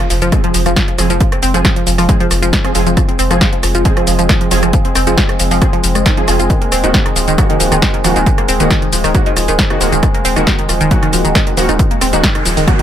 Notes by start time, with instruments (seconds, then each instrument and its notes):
Already playing: synth drone G#3 C4, impact
0.10 sub bass F1, synth arpeggio sound F3, open hi-hat, shaker
0.22 sub bass F1, synth arpeggio sound F3, closed hi-hat, shaker
0.32 synth stab F3 C4 G#4, synth arpeggio sound G#3, kick, cross-stick, closed hi-hat, shaker
0.44 synth arpeggio sound F3, closed hi-hat
0.54 sub bass F1, synth arpeggio sound F3, open hi-hat, shaker
0.66 sub bass F1, synth arpeggio sound F3, cross-stick, closed hi-hat, shaker
0.76 kick, snare, closed hi-hat, shaker
0.88 synth arpeggio sound F3, closed hi-hat
0.98 sub bass F1, synth arpeggio sound F3, synth stab F3 C4 G#4, cross-stick, open hi-hat, shaker
1.10 sub bass F1, synth arpeggio sound F3, closed hi-hat, shaker
1.21 synth arpeggio sound F3, kick, closed hi-hat, shaker
1.32 synth arpeggio sound C4, cross-stick, closed hi-hat
1.43 sub bass F1, synth arpeggio sound C4, open hi-hat, shaker
1.54 sub bass F1, synth stab F3 C4 G#4, synth arpeggio sound F3, closed hi-hat, shaker
1.65 synth arpeggio sound F3, kick, cross-stick, snare, closed hi-hat, shaker
1.76 synth arpeggio sound F3, closed hi-hat
1.87 sub bass F1, synth arpeggio sound F3, open hi-hat, shaker
1.98 sub bass F1, synth arpeggio sound F3, cross-stick, open hi-hat, shaker
2.09 synth stab F3 C4 G#4, synth arpeggio sound G#3, kick, closed hi-hat, shaker
2.20 synth arpeggio sound F3, closed hi-hat
2.31 sub bass F1, synth arpeggio sound F3, cross-stick, open hi-hat, shaker
2.42 sub bass F1, synth arpeggio sound F3, closed hi-hat, shaker
2.53 synth arpeggio sound F3, kick, snare, closed hi-hat, shaker
2.64 synth arpeggio sound F3, synth stab F3 C4 G#4, cross-stick, closed hi-hat
2.75 sub bass F1, synth arpeggio sound F3, synth stab F3 C4 G#4, open hi-hat, shaker
2.87 sub bass F1, synth arpeggio sound F3, closed hi-hat, shaker
2.97 synth arpeggio sound F3, kick, cross-stick, closed hi-hat, shaker
3.09 synth arpeggio sound C4, closed hi-hat
3.19 sub bass F1, synth arpeggio sound C4, open hi-hat, shaker
3.31 sub bass F1, synth arpeggio sound F3, synth stab F3 C4 G#4, cross-stick, closed hi-hat, shaker
3.41 synth arpeggio sound F3, kick, snare, closed hi-hat, shaker
3.53 synth arpeggio sound F3, closed hi-hat
3.63 sub bass F1, synth arpeggio sound F3, cross-stick, open hi-hat, shaker
3.75 sub bass F1, synth arpeggio sound F3, closed hi-hat, shaker
3.85 synth stab F3 C4 G#4, synth arpeggio sound G#3, kick, closed hi-hat, shaker
3.97 synth arpeggio sound F3, cross-stick, closed hi-hat
4.07 sub bass F1, synth arpeggio sound F3, open hi-hat, shaker
4.19 sub bass F1, synth arpeggio sound F3, closed hi-hat, shaker
4.29 synth arpeggio sound F3, kick, cross-stick, snare, closed hi-hat, shaker
4.41 synth arpeggio sound F3, closed hi-hat
4.51 sub bass F1, synth arpeggio sound F3, synth stab F3 C4 G#4, open hi-hat, shaker
4.63 sub bass F1, synth arpeggio sound F3, cross-stick, closed hi-hat, shaker
4.73 synth arpeggio sound F3, kick, closed hi-hat, shaker
4.85 synth arpeggio sound C4, closed hi-hat
4.95 sub bass F1, synth arpeggio sound C4, cross-stick, open hi-hat, shaker
5.07 sub bass F1, synth stab F3 C4 G#4, synth arpeggio sound F3, closed hi-hat, shaker
5.18 synth arpeggio sound F3, kick, snare, closed hi-hat, shaker
5.29 synth arpeggio sound F3, cross-stick, closed hi-hat
5.40 sub bass F1, synth arpeggio sound F3, open hi-hat, shaker
5.51 sub bass F1, synth arpeggio sound F3, open hi-hat, shaker
5.62 synth stab F3 C4 G#4, synth arpeggio sound G#3, kick, cross-stick, closed hi-hat, shaker
5.73 synth arpeggio sound F3, closed hi-hat
5.84 sub bass F1, synth arpeggio sound F3, open hi-hat, shaker
5.95 sub bass F1, synth arpeggio sound G#3, cross-stick, closed hi-hat, shaker
6.06 synth arpeggio sound D#3, kick, snare, closed hi-hat, shaker
6.17 synth arpeggio sound F3, synth stab F3 C4 G#4, closed hi-hat
6.28 sub bass F1, synth stab F3 C4 G#4, synth arpeggio sound F3, cross-stick, open hi-hat, shaker
6.40 sub bass F1, synth arpeggio sound F4, closed hi-hat, shaker
6.50 synth arpeggio sound D#3, kick, closed hi-hat, shaker
6.62 synth arpeggio sound A#3, closed hi-hat
6.72 sub bass D#1, synth arpeggio sound C4, cross-stick, open hi-hat, shaker
6.84 sub bass D#1, synth stab D#3 A#3 F#4, synth arpeggio sound D#3, closed hi-hat, shaker
6.94 synth arpeggio sound D#3, kick, snare, closed hi-hat, shaker
7.06 synth arpeggio sound D#3, cross-stick, closed hi-hat
7.16 sub bass D#1, synth arpeggio sound F3, open hi-hat, shaker
7.28 sub bass D#1, synth arpeggio sound D#3, closed hi-hat, shaker
7.38 synth stab D#3 A#3 F#4, synth arpeggio sound F#3, kick, cross-stick, closed hi-hat, shaker
7.50 synth arpeggio sound D#3, closed hi-hat
7.60 sub bass D#1, synth arpeggio sound F3, open hi-hat, shaker
7.72 sub bass D#1, synth arpeggio sound D#3, cross-stick, closed hi-hat, shaker
7.82 synth arpeggio sound D#3, kick, snare, closed hi-hat, shaker
7.94 synth arpeggio sound D#3, closed hi-hat
8.04 sub bass D#1, synth stab D#3 A#3 F#4, synth arpeggio sound F3, cross-stick, open hi-hat, shaker
8.16 sub bass D#1, synth arpeggio sound D#3, closed hi-hat, shaker
8.26 synth arpeggio sound D#3, kick, closed hi-hat, shaker
8.38 synth arpeggio sound A#3, cross-stick, closed hi-hat
8.48 sub bass D#1, synth arpeggio sound C4, open hi-hat, shaker
8.60 sub bass D#1, synth arpeggio sound D#3, synth stab D#3 A#3 F#4, closed hi-hat, shaker
8.71 synth arpeggio sound D#3, kick, cross-stick, snare, closed hi-hat, shaker
8.82 synth arpeggio sound D#3, closed hi-hat
8.93 sub bass D#1, synth arpeggio sound F3, open hi-hat, shaker
9.04 sub bass D#1, synth arpeggio sound D#3, cross-stick, open hi-hat, shaker
9.15 synth stab D#3 A#3 F#4, synth arpeggio sound F#3, kick, closed hi-hat, shaker
9.26 synth arpeggio sound D#3, closed hi-hat
9.37 sub bass D#1, synth arpeggio sound F3, cross-stick, open hi-hat, shaker
9.48 sub bass D#1, synth arpeggio sound D#3, closed hi-hat, shaker
9.59 kick, snare, closed hi-hat, shaker
9.70 synth arpeggio sound D#3, synth stab D#3 A#3 F#4, cross-stick, closed hi-hat
9.81 sub bass D#1, synth stab D#3 A#3 F#4, synth arpeggio sound F3, open hi-hat, shaker
9.92 sub bass D#1, synth arpeggio sound D#3, closed hi-hat, shaker
10.03 synth arpeggio sound D#3, kick, cross-stick, closed hi-hat, shaker
10.14 synth arpeggio sound A#3, closed hi-hat
10.25 sub bass D#1, synth arpeggio sound C4, open hi-hat, shaker
10.36 sub bass D#1, synth arpeggio sound D#3, synth stab D#3 A#3 F#4, cross-stick, closed hi-hat, shaker
10.47 synth arpeggio sound D#3, kick, snare, closed hi-hat, shaker
10.59 synth arpeggio sound D#3, closed hi-hat
10.69 sub bass D#1, synth arpeggio sound F3, cross-stick, open hi-hat, shaker
10.81 sub bass D#1, synth arpeggio sound D#3, closed hi-hat, shaker
10.91 synth stab D#3 A#3 F#4, synth arpeggio sound F#3, kick, closed hi-hat, shaker
11.03 synth arpeggio sound D#3, cross-stick, closed hi-hat
11.13 sub bass D#1, synth arpeggio sound F3, open hi-hat, shaker
11.25 sub bass D#1, synth arpeggio sound D#3, closed hi-hat, shaker
11.35 synth arpeggio sound D#3, kick, cross-stick, snare, closed hi-hat, shaker
11.47 synth arpeggio sound D#3, closed hi-hat
11.57 sub bass D#1, synth stab D#3 A#3 F#4, synth arpeggio sound F3, open hi-hat, shaker
11.69 sub bass D#1, synth arpeggio sound D#3, cross-stick, closed hi-hat, shaker
11.79 synth arpeggio sound D#3, kick, closed hi-hat, noise sweep, shaker
11.91 synth arpeggio sound A#3, closed hi-hat
12.01 sub bass D#1, synth arpeggio sound C4, cross-stick, open hi-hat, shaker
12.13 sub bass D#1, synth arpeggio sound D#3, synth stab D#3 A#3 F#4, closed hi-hat, shaker
12.23 synth arpeggio sound D#3, kick, snare, closed hi-hat, shaker
12.35 synth arpeggio sound D#3, cross-stick, closed hi-hat
12.46 sub bass D#1, synth arpeggio sound F3, open hi-hat, shaker
12.57 sub bass D#1, synth arpeggio sound D#3, open hi-hat, shaker
12.68 synth stab D#3 A#3 F#4, synth arpeggio sound F#3, kick, cross-stick, closed hi-hat, shaker
12.79 synth arpeggio sound D#3, closed hi-hat